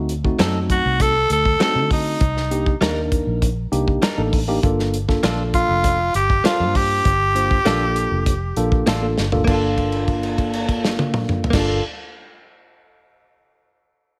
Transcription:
Already playing: D2 A3 C4 D#4 F#4
0.09 closed hi-hat
0.24 A3 C4 D#4 F#4, kick
0.39 F#2 F#3 C4 D#4 A4, snare, closed hi-hat
0.70 F#4, kick, closed hi-hat
0.85 C2
1.00 A4, kick, closed hi-hat
1.30 D2 A4, closed hi-hat
1.45 kick
1.60 F#3 A3 C4 D#4 F#4 A4, snare, closed hi-hat
1.75 D3
1.91 D#4, kick, open hi-hat
2.21 C2, kick, closed hi-hat
2.37 snare
2.51 A#3 D4 D#4 G4, closed hi-hat
2.66 kick
2.81 D#2 G3 A#3 D4 D#4 A#4, snare, closed hi-hat
3.12 kick, closed hi-hat
3.27 A#1
3.42 kick, closed hi-hat
3.72 C2 A#3 D4 D#4 G4, closed hi-hat
3.88 kick
4.02 G3 D4 D#4 A#4, muted fingered electric bass stroke, snare, closed hi-hat
4.17 A1 A#3 D4 D#4 A4
4.33 kick, open hi-hat
4.48 A#3 D4 D#4 G4
4.63 G1 A#3 D4 F4 A4, kick, closed hi-hat
4.79 snare
4.94 closed hi-hat
5.08 A#3 D4 F4 A4, kick, snare
5.23 A#1 A#3 D4 F4 A4, snare, closed hi-hat
5.54 F4, kick, closed hi-hat
5.69 F1
5.84 kick, closed hi-hat
6.14 G1 G4, closed hi-hat
6.30 kick
6.44 A#3 D4 F4 A4 C5, snare, closed hi-hat
6.60 G2
6.75 G4, kick, open hi-hat
7.05 G1, kick, closed hi-hat
7.35 A#3 D4 F4 C5, closed hi-hat
7.51 kick
7.65 A#1 A#3 D4 F4 A4, snare, closed hi-hat
7.96 closed hi-hat
8.11 F1
8.26 kick, closed hi-hat
8.56 A#1 A#3 D4 F4 A4, closed hi-hat
8.72 kick
8.86 A1 A#3 D4 F4 A4, snare, closed hi-hat
9.02 A#3 D4 F4 A4
9.18 G1, snare
9.32 A#3 D4 F4 A4, floor tom
9.45 G1 A#3 D4, kick, crash
9.49 F4 A4
9.54 A4
9.78 kick, crash
9.92 crash
10.07 kick, crash
10.23 crash
10.38 kick, crash
10.53 crash
10.69 kick, crash
10.85 snare
10.99 high tom
11.14 mid tom
11.29 mid tom
11.44 floor tom
11.50 G1 A#3 D4 F4, kick, snare, crash
11.55 F4 A4
11.60 A4

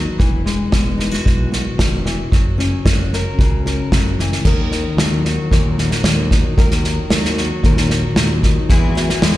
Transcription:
Already playing: F#3 B3 D#4 B4
0.19 E1 E3, kick, snare
0.46 G#3, snare
0.72 E1 B3, kick, snare
0.98 D#4, snare
1.11 F#4, snare
1.25 B1 B2, kick, snare
1.52 F#4, snare
1.78 E1 D#3, kick, snare
2.05 E3, snare
2.32 F#1 F#3, kick, snare
2.58 C#4, snare
2.85 F#1 F#4, kick, snare
3.13 A#4, snare
3.39 C#2 C#3, kick, snare
3.66 A#4, snare
3.92 F#1 F#3, kick, snare
4.19 E3, snare
4.32 snare
4.45 D#2 D#3 A#4, kick, snare, crash
4.72 snare
4.97 D#2 F#3, snare
5.25 F#4, snare
5.51 D#2 A#2 A#4, kick, snare
5.78 F#4, snare
5.91 snare
6.04 D#2 F#3, snare
6.31 D#4, kick, snare
6.57 D#2 D#3 A#4, kick, snare
6.71 snare
6.84 snare
7.10 D#2 F#3, snare
7.25 snare
7.37 F#4, snare
7.63 D#2 A#2 A#4, kick, snare
7.77 snare
7.90 F#4, snare
8.16 D#2 F#3, snare
8.43 D#4, kick, snare
8.69 E2 E3 G#3 B3 E4 F#4 G#4, kick, snare
8.95 B3 E4 F#4, snare
9.09 snare
9.22 E2 G#3 B3 E4 F#4, snare

